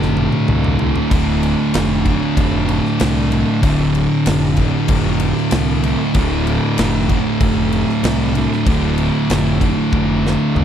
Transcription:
Already playing: fingered electric bass F1, distorted electric guitar D2 A2 D3
0.02 snare
0.17 high tom
0.32 high tom
0.48 fingered electric bass C2, mid tom
0.64 mid tom
0.79 distorted electric guitar D2 A2 D3, floor tom
0.96 floor tom
1.10 fingered electric bass D1, distorted electric guitar D2 A2 D3, kick, crash
1.14 distorted electric guitar D3
1.43 crash
1.74 fingered electric bass F1, snare, crash
2.05 distorted electric guitar D2 A2 D3, kick, crash
2.37 fingered electric bass F1, kick, crash
2.69 crash
2.86 snare
3.00 fingered electric bass C2, snare, crash
3.30 distorted electric guitar D2 A2 D3, crash
3.61 fingered electric bass D1, distorted electric guitar D2 A2, kick, crash
3.65 distorted electric guitar D3
3.95 crash
4.26 fingered electric bass F1, snare, crash
4.56 distorted electric guitar D2 A2 D3, kick, crash
4.88 fingered electric bass F1, kick, crash
5.20 crash
5.37 snare
5.51 fingered electric bass C2, snare, crash
5.83 distorted electric guitar D2 A2 D3, crash
6.14 fingered electric bass D1, distorted electric guitar D2 A2 D3, kick, crash
6.18 distorted electric guitar D3
6.47 crash
6.78 fingered electric bass F1, snare, crash
7.08 distorted electric guitar D2 A2 D3, kick, crash
7.40 fingered electric bass F1, kick, crash
7.72 crash
7.89 snare
8.03 fingered electric bass C2, snare, crash
8.35 distorted electric guitar D2 A2 D3, crash
8.52 snare
8.65 fingered electric bass D1, distorted electric guitar D2 A2 D3, kick, crash
8.70 distorted electric guitar D3
8.98 crash
9.29 fingered electric bass F1, snare, crash
9.60 distorted electric guitar D2 A2 D3, kick, crash
9.92 fingered electric bass F1, kick
10.27 snare
10.55 fingered electric bass C2, mid tom

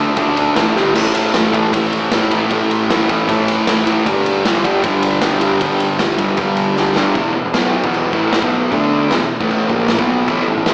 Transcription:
Already playing: picked electric bass D2, distorted electric guitar D3
0.00 distorted electric guitar A3 D4
0.17 distorted electric guitar D3 A3 D4, kick, ride
0.37 picked electric bass B1, ride
0.55 picked electric bass A1, distorted electric guitar A2 E3 A3, snare, ride
0.75 picked electric bass G1, distorted electric guitar G2 D3 G3, snare
0.94 picked electric bass A1, distorted electric guitar A2 E3 A3, crash
1.15 picked electric bass A1, ride
1.33 picked electric bass F#2, distorted electric guitar A2 E3 A3, snare, ride
1.53 picked electric bass A1, distorted electric guitar A2 E3 A3, kick, ride
1.73 picked electric bass A1, distorted electric guitar A2 E3 A3, kick, ride
1.92 picked electric bass F#1, ride
2.11 picked electric bass A1, distorted electric guitar A2 E3 A3, snare, ride
2.31 distorted electric guitar A2 E3 A3, ride
2.50 picked electric bass A1, distorted electric guitar A2 E3 A3, kick, ride
2.70 picked electric bass A1, ride
2.89 picked electric bass F#2, distorted electric guitar A2 E3 A3, snare, ride
3.09 picked electric bass A1, distorted electric guitar A2 E3 A3, kick, ride
3.28 picked electric bass A1, distorted electric guitar A2 E3 A3, kick, ride
3.48 picked electric bass F#1, ride
3.67 picked electric bass F#1, distorted electric guitar A2 E3 A3, snare, ride
3.86 distorted electric guitar A2 E3 A3, ride
4.05 picked electric bass G1, distorted electric guitar G2 D3 G3, kick, ride
4.26 picked electric bass G1, ride
4.45 picked electric bass E2, distorted electric guitar G2 D3 G3, snare, ride
4.64 picked electric bass G1, distorted electric guitar G2 D3 G3, kick, ride
4.83 picked electric bass G1, distorted electric guitar G2 D3 G3, kick, ride
5.03 picked electric bass E1, ride
5.21 picked electric bass G1, distorted electric guitar G2 D3 G3, snare, ride
5.41 distorted electric guitar G2 D3 G3, ride
5.60 picked electric bass G1, distorted electric guitar G2 D3 G3, kick, ride
5.80 picked electric bass G1, ride
5.99 picked electric bass E2, distorted electric guitar G2 D3 G3, snare, ride
6.18 picked electric bass G1, distorted electric guitar G2 D3 G3, kick, ride
6.37 picked electric bass G1, distorted electric guitar G2 D3 G3, kick, ride
6.57 picked electric bass E1, ride
6.76 picked electric bass G1, distorted electric guitar G2 D3 G3, snare
6.95 distorted electric guitar G2 D3 G3, snare
7.15 picked electric bass E1, distorted electric guitar E2 B2 E3, kick, crash
7.35 picked electric bass E1, distorted electric guitar E2 B2
7.45 picked electric bass E1, distorted electric guitar E2 B2
7.54 picked electric bass B1, distorted electric guitar B2 F#3 B3, snare, crash
7.83 picked electric bass E1, distorted electric guitar E2 B2 E3, kick
7.94 crash
8.12 picked electric bass A1, distorted electric guitar A2 E3 A3, kick
8.33 snare, crash
8.42 picked electric bass B1, distorted electric guitar B2 F#3 B3, kick
8.71 picked electric bass D2, distorted electric guitar D3 A3 D4, kick, crash
9.11 picked electric bass E1, distorted electric guitar E2 B2, snare, crash
9.22 picked electric bass E1, distorted electric guitar E2 B2
9.41 picked electric bass A1, distorted electric guitar A2 E3 A3, kick
9.51 crash
9.69 picked electric bass A#1, distorted electric guitar A#2 F3 A#3, kick
9.88 snare, crash
9.99 picked electric bass B1, distorted electric guitar B2 F#3 B3, kick
10.28 picked electric bass A1, distorted electric guitar A2 E3 A3, kick, crash
10.47 picked electric bass A1, distorted electric guitar A2 E3
10.57 picked electric bass A1, distorted electric guitar A2 E3
10.66 picked electric bass E2, distorted electric guitar E3 B3 E4, snare, crash

